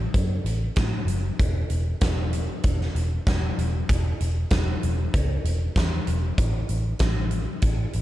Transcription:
0.14 0.37 F#2 medium
0.14 kick medium
0.14 closed hi-hat medium
0.45 0.68 A1 medium
0.45 closed hi-hat medium
0.76 1.00 A2 medium
0.76 kick loud
0.76 snare medium
0.76 closed hi-hat medium
1.05 1.29 F#1 medium
1.05 closed hi-hat medium
1.39 1.62 E1 medium
1.39 kick loud
1.39 closed hi-hat medium
1.70 1.93 E1 medium
1.70 closed hi-hat medium
2.01 2.47 E1 medium
2.01 kick loud
2.01 snare loud
2.01 closed hi-hat medium
2.33 closed hi-hat medium
2.63 2.87 E1 medium
2.63 kick medium
2.63 closed hi-hat medium
2.81 snare soft
2.95 3.18 E1 medium
2.95 closed hi-hat medium
3.27 3.50 E1 medium
3.27 kick loud
3.27 snare loud
3.27 closed hi-hat medium
3.58 3.81 E1 medium
3.58 closed hi-hat medium
3.89 4.12 E1 medium
3.89 kick loud
3.89 closed hi-hat medium
4.21 4.43 E1 medium
4.21 closed hi-hat medium
4.50 4.74 E1 medium
4.50 kick loud
4.50 snare loud
4.50 closed hi-hat medium
4.83 5.06 E1 medium
4.83 closed hi-hat medium
5.14 5.36 C#2 medium
5.14 kick loud
5.14 closed hi-hat medium
5.44 5.67 E1 medium
5.44 closed hi-hat medium
5.76 5.99 E2 medium
5.76 kick loud
5.76 snare loud
5.76 closed hi-hat medium
6.07 6.30 E1 medium
6.07 closed hi-hat medium
6.38 6.61 A1 medium
6.38 kick loud
6.38 closed hi-hat loud
6.69 6.92 A1 medium
6.69 closed hi-hat medium
6.99 7.45 A1 medium
6.99 kick loud
6.99 snare loud
6.99 closed hi-hat medium
7.31 closed hi-hat medium
7.62 7.85 A1 medium
7.62 kick loud
7.62 closed hi-hat medium
7.93 8.02 A1 medium
7.93 closed hi-hat medium

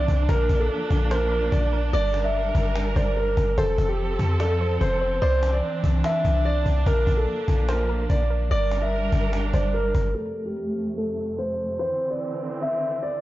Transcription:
0.00 0.27 E3 medium
0.00 0.27 C4 medium
0.00 3.54 D4 loud
0.00 0.26 D5 loud
0.00 cajon slap soft
0.08 0.28 C2 loud
0.08 cajon bass loud
0.18 cajon slap soft
0.29 0.49 A#1 loud
0.29 1.92 F3 medium
0.29 1.92 A#3 medium
0.29 0.58 A#4 loud
0.29 1.07 A#4 loud
0.29 cajon bass loud
0.39 cajon slap soft
0.49 0.69 A#1 loud
0.49 cajon bass loud
0.59 1.08 A4 medium
0.59 cajon slap soft
0.70 cajon slap soft
0.80 cajon slap soft
0.90 1.50 A#1 loud
0.90 cajon bass loud
1.01 cajon slap soft
1.11 1.50 A#4 medium
1.11 1.31 C5 medium
1.11 cajon slap loud
1.21 cajon slap soft
1.31 1.70 A#4 medium
1.31 cajon slap soft
1.52 1.92 A#1 loud
1.52 1.91 D5 medium
1.52 cajon bass loud
1.57 cajon slap soft
1.62 cajon slap soft
1.68 cajon slap soft
1.73 1.92 A#4 medium
1.83 cajon slap soft
1.93 2.52 G1 loud
1.93 3.56 G3 medium
1.93 3.56 A#4 medium
1.93 2.92 D5 loud
1.93 2.22 D5 loud
2.14 cajon slap loud
2.24 2.72 E5 medium
2.24 cajon slap soft
2.34 cajon slap soft
2.41 cajon slap soft
2.48 cajon slap soft
2.55 2.94 G1 loud
2.55 cajon bass loud
2.65 cajon slap soft
2.75 cajon slap loud
2.86 cajon slap soft
2.96 3.35 G1 loud
2.96 3.35 C5 medium
2.96 3.15 D5 medium
2.96 cajon bass loud
3.16 3.55 A#4 medium
3.16 cajon slap soft
3.22 cajon slap soft
3.27 cajon slap soft
3.32 cajon slap soft
3.37 3.57 G1 loud
3.37 3.57 A#4 medium
3.37 cajon bass loud
3.47 cajon slap soft
3.58 3.77 F1 loud
3.58 5.20 F3 medium
3.58 6.83 C4 medium
3.58 5.20 A4 medium
3.58 3.87 A4 loud
3.58 4.36 C5 loud
3.58 cajon bass loud
3.68 cajon slap soft
3.78 4.18 F1 loud
3.78 cajon bass loud
3.88 4.37 G4 medium
3.88 cajon slap soft
3.99 cajon slap soft
4.09 cajon slap soft
4.19 4.78 F2 loud
4.19 cajon bass loud
4.30 cajon slap soft
4.40 4.78 A4 medium
4.40 4.59 D5 medium
4.40 cajon slap loud
4.50 cajon slap soft
4.60 4.99 C5 medium
4.60 cajon slap soft
4.81 5.20 F1 loud
4.81 5.19 C5 medium
4.81 cajon bass loud
4.86 cajon slap soft
4.91 cajon slap soft
4.96 cajon slap soft
5.01 5.21 C5 medium
5.12 cajon slap soft
5.22 5.61 C2 loud
5.22 6.85 E3 medium
5.22 8.47 D4 medium
5.22 5.51 C5 loud
5.22 6.41 D5 loud
5.32 cajon slap soft
5.43 cajon slap loud
5.53 6.01 D5 medium
5.53 cajon slap soft
5.63 cajon slap soft
5.73 cajon slap soft
5.84 6.03 C2 loud
5.84 cajon bass loud
5.94 cajon slap soft
6.04 6.43 E5 medium
6.04 cajon slap loud
6.14 cajon slap soft
6.25 6.64 C2 loud
6.25 cajon bass loud
6.45 6.84 D5 loud
6.45 cajon slap soft
6.50 cajon slap soft
6.56 cajon slap soft
6.61 cajon slap soft
6.66 6.86 C2 loud
6.66 cajon bass loud
6.76 cajon slap soft
6.86 7.06 A#1 loud
6.86 8.49 F3 medium
6.86 8.49 A#3 medium
6.86 7.15 A#4 medium
6.86 7.65 A#4 loud
6.86 cajon bass loud
6.97 cajon slap soft
7.07 7.27 A#1 loud
7.07 cajon bass loud
7.17 7.65 A4 medium
7.17 cajon slap soft
7.28 cajon slap soft
7.38 cajon slap soft
7.48 8.07 A#1 loud
7.48 cajon bass loud
7.59 cajon slap soft
7.69 8.07 A#4 medium
7.69 7.88 C5 medium
7.69 cajon slap loud
7.79 cajon slap soft
7.89 8.28 A#4 medium
7.89 cajon slap soft
8.10 8.49 A#1 loud
8.10 8.48 D5 medium
8.10 cajon bass loud
8.15 cajon slap soft
8.20 cajon slap soft
8.25 cajon slap soft
8.30 8.50 A#4 medium
8.40 cajon slap soft
8.51 9.10 G1 loud
8.51 10.14 G3 medium
8.51 10.14 D4 medium
8.51 10.14 A#4 medium
8.51 9.50 D5 loud
8.51 8.80 D5 loud
8.51 cajon slap soft
8.61 cajon slap soft
8.71 cajon slap loud
8.81 9.30 E5 medium
8.81 cajon slap soft
8.92 cajon slap soft
8.99 cajon slap soft
9.06 cajon slap soft
9.12 9.52 G1 loud
9.12 cajon bass loud
9.23 cajon slap soft
9.33 cajon slap loud
9.43 cajon slap soft
9.54 9.93 G1 loud
9.54 9.92 C5 medium
9.54 9.73 D5 medium
9.54 cajon bass loud
9.74 10.13 A#4 medium
9.74 cajon slap soft
9.79 cajon slap soft
9.84 cajon slap soft
9.89 cajon slap soft
9.95 10.14 G1 loud
9.95 10.14 A#4 medium
9.95 cajon bass medium
10.05 cajon slap soft
10.15 11.78 F2 medium
10.15 11.78 C3 medium
10.15 11.78 A3 medium
10.15 10.44 A4 loud
10.46 10.94 G4 medium
10.97 11.36 A4 medium
11.38 11.77 C5 medium
11.79 13.21 D3 medium
11.79 13.21 E3 medium
11.79 13.21 C4 medium
11.79 12.08 C5 loud
12.10 12.59 D5 medium
12.62 13.00 E5 medium
13.03 13.21 D5 medium

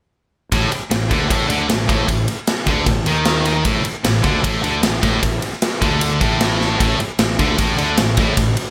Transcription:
0.52 0.71 A1 medium
0.52 0.70 A2 loud
0.52 kick loud
0.52 ride medium
0.72 muted fingered electric bass stroke soft
0.72 muted distorted electric guitar stroke medium
0.72 ride medium
0.90 1.10 A1 medium
0.90 1.07 A2 medium
0.90 snare loud
0.90 ride loud
1.09 1.29 D2 medium
1.09 1.29 D3 medium
1.09 kick loud
1.09 ride medium
1.29 1.49 A1 medium
1.29 1.48 A2 medium
1.29 kick loud
1.29 ride loud
1.48 1.68 D2 loud
1.48 1.68 D3 loud
1.48 ride medium
1.68 1.88 A1 medium
1.68 1.85 A2 medium
1.68 snare loud
1.68 ride medium
1.88 2.08 A1 medium
1.88 2.07 A2 loud
1.88 kick loud
1.88 ride medium
2.08 2.27 A1 medium
2.08 2.24 A2 medium
2.08 kick medium
2.08 ride loud
2.28 ride medium
2.47 snare loud
2.47 ride medium
2.66 2.85 D2 medium
2.66 2.87 D3 loud
2.66 kick loud
2.66 ride medium
2.86 3.05 A1 medium
2.86 3.04 A2 medium
2.86 kick loud
2.86 ride medium
3.06 3.62 D#2 medium
3.06 3.65 D#3 loud
3.06 ride medium
3.25 snare loud
3.25 ride medium
3.45 ride medium
3.65 3.84 A1 loud
3.65 3.83 A2 loud
3.65 kick loud
3.65 ride medium
3.84 muted distorted electric guitar stroke medium
3.84 muted fingered electric bass stroke soft
3.84 ride medium
4.04 4.23 A1 medium
4.04 4.21 A2 medium
4.04 snare loud
4.04 ride loud
4.22 4.43 D2 loud
4.22 4.41 D3 loud
4.22 kick loud
4.22 ride medium
4.42 4.63 A1 medium
4.42 4.62 A2 loud
4.42 kick loud
4.42 ride loud
4.63 4.82 D2 medium
4.63 4.82 D3 loud
4.63 ride medium
4.83 5.02 A1 medium
4.83 4.99 A2 medium
4.83 snare loud
4.83 ride loud
5.03 5.22 A1 medium
5.03 5.21 A2 loud
5.03 kick loud
5.03 ride medium
5.22 5.41 A1 medium
5.22 5.38 A2 medium
5.22 kick medium
5.22 ride loud
5.42 ride medium
5.53 snare soft
5.62 snare loud
5.62 ride medium
5.81 6.18 D2 medium
5.81 6.21 D3 loud
5.81 kick loud
5.81 ride medium
6.01 ride medium
6.21 6.76 A1 medium
6.21 6.78 A2 loud
6.21 kick loud
6.21 ride medium
6.41 snare loud
6.41 ride medium
6.61 snare medium
6.79 6.99 A1 medium
6.79 6.99 A2 loud
6.79 kick loud
6.79 ride medium
7.00 muted fingered electric bass stroke soft
7.00 muted distorted electric guitar stroke medium
7.00 ride medium
7.19 7.37 A1 medium
7.19 7.35 A2 medium
7.19 snare loud
7.19 ride medium
7.39 7.57 D2 medium
7.39 7.58 D3 loud
7.39 kick medium
7.39 ride medium
7.58 7.77 A1 medium
7.58 7.78 A2 loud
7.58 kick loud
7.58 ride loud
7.78 7.97 D2 medium
7.78 7.97 D3 loud
7.78 ride medium
7.97 8.16 A1 medium
7.97 8.14 A2 medium
7.97 snare loud
7.97 ride loud
8.17 8.36 A1 medium
8.17 8.36 A2 medium
8.17 kick loud
8.17 ride medium
8.37 8.55 A1 medium
8.37 8.53 A2 medium
8.37 kick medium
8.37 ride loud
8.57 ride medium

